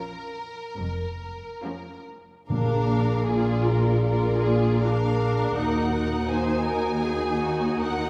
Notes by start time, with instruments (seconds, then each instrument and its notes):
Already playing: viola section F3 C#4, violin section F4 A#4
0.78 double bass section F1, cello section F2
1.64 viola section F3 C#4, violin section F4 A#4
2.48 double bass section A#1, timpani A#2, cello section A#2, french horn section D4 G#4, viola section D4, violin section A#4 F5
3.27 viola section F4, violin section G#4 D5
3.66 violin section A#4
4.04 viola section F4, violin section A#4 D5
4.41 violin section G#4
4.79 viola section D4, violin section A#4 F5
5.20 viola section D4
5.55 double bass section D#2, cello section D#2, french horn section A#3 F#4, viola section D#4, violin section F#5
5.96 viola section D#4
6.30 violin section C5 G#5
6.66 violin section A#4
7.04 violin section G#4
7.42 violin section F#4
7.79 violin section A#4 F#5